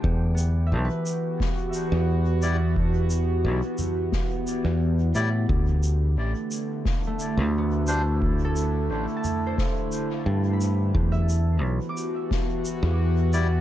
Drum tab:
SH |-x-x-x-x|-x-x-x-x|-x-x-x-x|-x-x-x-x|
SD |----o---|----o---|----o---|----o---|
T2 |--------|---o----|--------|---o----|
BD |o---o---|o---o---|o---o---|o---o---|

SH |-x-x-x-x|
SD |----o---|
T2 |--------|
BD |o---o---|